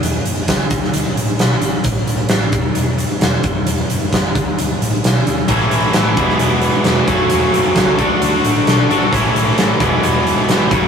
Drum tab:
HH |x-x-x-x-x-x-x-x-|x-x-x-x-x-x-x-x-|x-x-x-x-x-x-x-x-|x-x-x-x-x-x-x-x-|
SD |----o--o----o---|----o-------o---|----o-------o---|----o--o----o---|
BD |----o-o---------|o-----o-------o-|----o-o---------|o-----o-------o-|

HH |x-x-x-x-x-x-x-x-|x-x-x-x-x-x-x-x-|
SD |----o-------o---|----o-------o---|
BD |----o-o---------|o-----o-------o-|